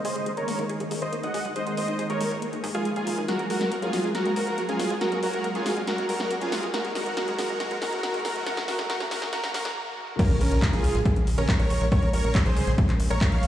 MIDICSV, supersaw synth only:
0, 0, Header, 1, 2, 480
1, 0, Start_track
1, 0, Key_signature, -5, "minor"
1, 0, Tempo, 431655
1, 1732, Time_signature, 4, 2, 24, 8
1, 14979, End_track
2, 0, Start_track
2, 0, Title_t, "Supersaw synth"
2, 0, Program_c, 0, 81
2, 53, Note_on_c, 0, 72, 76
2, 53, Note_on_c, 0, 75, 97
2, 340, Note_off_c, 0, 72, 0
2, 341, Note_off_c, 0, 75, 0
2, 412, Note_on_c, 0, 70, 78
2, 412, Note_on_c, 0, 73, 91
2, 700, Note_off_c, 0, 70, 0
2, 700, Note_off_c, 0, 73, 0
2, 1132, Note_on_c, 0, 72, 76
2, 1132, Note_on_c, 0, 75, 88
2, 1324, Note_off_c, 0, 72, 0
2, 1324, Note_off_c, 0, 75, 0
2, 1372, Note_on_c, 0, 75, 76
2, 1372, Note_on_c, 0, 78, 99
2, 1660, Note_off_c, 0, 75, 0
2, 1660, Note_off_c, 0, 78, 0
2, 1732, Note_on_c, 0, 72, 74
2, 1732, Note_on_c, 0, 75, 97
2, 1924, Note_off_c, 0, 72, 0
2, 1924, Note_off_c, 0, 75, 0
2, 1972, Note_on_c, 0, 72, 78
2, 1972, Note_on_c, 0, 75, 98
2, 2260, Note_off_c, 0, 72, 0
2, 2260, Note_off_c, 0, 75, 0
2, 2332, Note_on_c, 0, 70, 78
2, 2332, Note_on_c, 0, 73, 91
2, 2620, Note_off_c, 0, 70, 0
2, 2620, Note_off_c, 0, 73, 0
2, 3052, Note_on_c, 0, 65, 77
2, 3052, Note_on_c, 0, 68, 90
2, 3244, Note_off_c, 0, 65, 0
2, 3244, Note_off_c, 0, 68, 0
2, 3291, Note_on_c, 0, 65, 79
2, 3291, Note_on_c, 0, 68, 100
2, 3579, Note_off_c, 0, 65, 0
2, 3580, Note_off_c, 0, 68, 0
2, 3652, Note_on_c, 0, 66, 66
2, 3652, Note_on_c, 0, 70, 88
2, 3844, Note_off_c, 0, 66, 0
2, 3844, Note_off_c, 0, 70, 0
2, 3892, Note_on_c, 0, 66, 72
2, 3892, Note_on_c, 0, 70, 86
2, 4180, Note_off_c, 0, 66, 0
2, 4180, Note_off_c, 0, 70, 0
2, 4252, Note_on_c, 0, 65, 72
2, 4252, Note_on_c, 0, 68, 83
2, 4540, Note_off_c, 0, 65, 0
2, 4540, Note_off_c, 0, 68, 0
2, 4611, Note_on_c, 0, 66, 76
2, 4611, Note_on_c, 0, 70, 91
2, 4804, Note_off_c, 0, 66, 0
2, 4804, Note_off_c, 0, 70, 0
2, 4852, Note_on_c, 0, 70, 87
2, 4853, Note_on_c, 0, 66, 72
2, 5140, Note_off_c, 0, 66, 0
2, 5140, Note_off_c, 0, 70, 0
2, 5212, Note_on_c, 0, 65, 73
2, 5212, Note_on_c, 0, 68, 94
2, 5500, Note_off_c, 0, 65, 0
2, 5500, Note_off_c, 0, 68, 0
2, 5572, Note_on_c, 0, 66, 69
2, 5572, Note_on_c, 0, 70, 91
2, 5764, Note_off_c, 0, 66, 0
2, 5764, Note_off_c, 0, 70, 0
2, 5813, Note_on_c, 0, 66, 72
2, 5813, Note_on_c, 0, 70, 92
2, 6101, Note_off_c, 0, 66, 0
2, 6101, Note_off_c, 0, 70, 0
2, 6172, Note_on_c, 0, 65, 73
2, 6173, Note_on_c, 0, 68, 88
2, 6460, Note_off_c, 0, 65, 0
2, 6460, Note_off_c, 0, 68, 0
2, 6532, Note_on_c, 0, 66, 75
2, 6532, Note_on_c, 0, 70, 102
2, 6724, Note_off_c, 0, 66, 0
2, 6724, Note_off_c, 0, 70, 0
2, 6773, Note_on_c, 0, 66, 72
2, 6773, Note_on_c, 0, 70, 91
2, 7061, Note_off_c, 0, 66, 0
2, 7061, Note_off_c, 0, 70, 0
2, 7133, Note_on_c, 0, 65, 77
2, 7133, Note_on_c, 0, 68, 94
2, 7420, Note_off_c, 0, 65, 0
2, 7421, Note_off_c, 0, 68, 0
2, 7492, Note_on_c, 0, 66, 72
2, 7492, Note_on_c, 0, 70, 95
2, 7684, Note_off_c, 0, 66, 0
2, 7684, Note_off_c, 0, 70, 0
2, 7732, Note_on_c, 0, 66, 74
2, 7732, Note_on_c, 0, 70, 92
2, 7953, Note_off_c, 0, 66, 0
2, 7953, Note_off_c, 0, 70, 0
2, 7971, Note_on_c, 0, 70, 98
2, 7972, Note_on_c, 0, 66, 75
2, 8164, Note_off_c, 0, 66, 0
2, 8164, Note_off_c, 0, 70, 0
2, 8213, Note_on_c, 0, 66, 77
2, 8213, Note_on_c, 0, 70, 98
2, 8433, Note_off_c, 0, 66, 0
2, 8433, Note_off_c, 0, 70, 0
2, 8452, Note_on_c, 0, 66, 78
2, 8452, Note_on_c, 0, 70, 101
2, 8644, Note_off_c, 0, 66, 0
2, 8644, Note_off_c, 0, 70, 0
2, 8691, Note_on_c, 0, 70, 96
2, 8692, Note_on_c, 0, 66, 78
2, 8913, Note_off_c, 0, 66, 0
2, 8913, Note_off_c, 0, 70, 0
2, 8932, Note_on_c, 0, 66, 80
2, 8933, Note_on_c, 0, 70, 104
2, 9124, Note_off_c, 0, 66, 0
2, 9125, Note_off_c, 0, 70, 0
2, 9172, Note_on_c, 0, 66, 79
2, 9172, Note_on_c, 0, 70, 97
2, 9393, Note_off_c, 0, 66, 0
2, 9393, Note_off_c, 0, 70, 0
2, 9414, Note_on_c, 0, 66, 78
2, 9414, Note_on_c, 0, 70, 100
2, 9605, Note_off_c, 0, 66, 0
2, 9605, Note_off_c, 0, 70, 0
2, 9653, Note_on_c, 0, 66, 80
2, 9653, Note_on_c, 0, 70, 98
2, 9845, Note_off_c, 0, 66, 0
2, 9845, Note_off_c, 0, 70, 0
2, 9892, Note_on_c, 0, 66, 80
2, 9892, Note_on_c, 0, 70, 105
2, 10084, Note_off_c, 0, 66, 0
2, 10084, Note_off_c, 0, 70, 0
2, 10132, Note_on_c, 0, 66, 77
2, 10132, Note_on_c, 0, 70, 105
2, 10324, Note_off_c, 0, 66, 0
2, 10324, Note_off_c, 0, 70, 0
2, 10373, Note_on_c, 0, 66, 79
2, 10373, Note_on_c, 0, 70, 105
2, 10564, Note_off_c, 0, 70, 0
2, 10565, Note_off_c, 0, 66, 0
2, 10612, Note_on_c, 0, 66, 82
2, 10612, Note_on_c, 0, 70, 100
2, 10804, Note_off_c, 0, 66, 0
2, 10804, Note_off_c, 0, 70, 0
2, 11332, Note_on_c, 0, 61, 74
2, 11332, Note_on_c, 0, 70, 98
2, 11524, Note_off_c, 0, 61, 0
2, 11524, Note_off_c, 0, 70, 0
2, 11573, Note_on_c, 0, 61, 80
2, 11573, Note_on_c, 0, 70, 96
2, 11860, Note_off_c, 0, 70, 0
2, 11861, Note_off_c, 0, 61, 0
2, 11932, Note_on_c, 0, 68, 94
2, 11933, Note_on_c, 0, 65, 78
2, 12220, Note_off_c, 0, 65, 0
2, 12220, Note_off_c, 0, 68, 0
2, 12652, Note_on_c, 0, 70, 93
2, 12653, Note_on_c, 0, 61, 77
2, 12844, Note_off_c, 0, 61, 0
2, 12844, Note_off_c, 0, 70, 0
2, 12893, Note_on_c, 0, 70, 83
2, 12893, Note_on_c, 0, 73, 101
2, 13180, Note_off_c, 0, 73, 0
2, 13181, Note_off_c, 0, 70, 0
2, 13252, Note_on_c, 0, 70, 75
2, 13252, Note_on_c, 0, 73, 96
2, 13444, Note_off_c, 0, 70, 0
2, 13444, Note_off_c, 0, 73, 0
2, 13492, Note_on_c, 0, 70, 75
2, 13492, Note_on_c, 0, 73, 93
2, 13780, Note_off_c, 0, 70, 0
2, 13780, Note_off_c, 0, 73, 0
2, 13852, Note_on_c, 0, 68, 74
2, 13852, Note_on_c, 0, 72, 97
2, 14140, Note_off_c, 0, 68, 0
2, 14140, Note_off_c, 0, 72, 0
2, 14572, Note_on_c, 0, 70, 80
2, 14572, Note_on_c, 0, 73, 94
2, 14764, Note_off_c, 0, 70, 0
2, 14764, Note_off_c, 0, 73, 0
2, 14812, Note_on_c, 0, 77, 99
2, 14813, Note_on_c, 0, 73, 82
2, 14979, Note_off_c, 0, 73, 0
2, 14979, Note_off_c, 0, 77, 0
2, 14979, End_track
0, 0, End_of_file